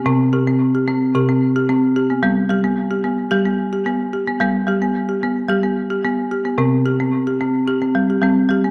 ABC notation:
X:1
M:4/4
L:1/16
Q:1/4=110
K:G
V:1 name="Marimba"
C2 G C2 G C2 G C2 G C2 G B, | B,2 G B,2 G B,2 G B,2 G B,2 G B, | B,2 G B,2 G B,2 G B,2 G B,2 G B, | C2 G C2 G C2 G C2 G C2 G B, |]
V:2 name="Marimba" clef=bass
C,2 C,6 C,8 | G,2 G,6 G,8 | G,2 G,6 G,8 | C,8 z2 G,2 G,2 G,2 |]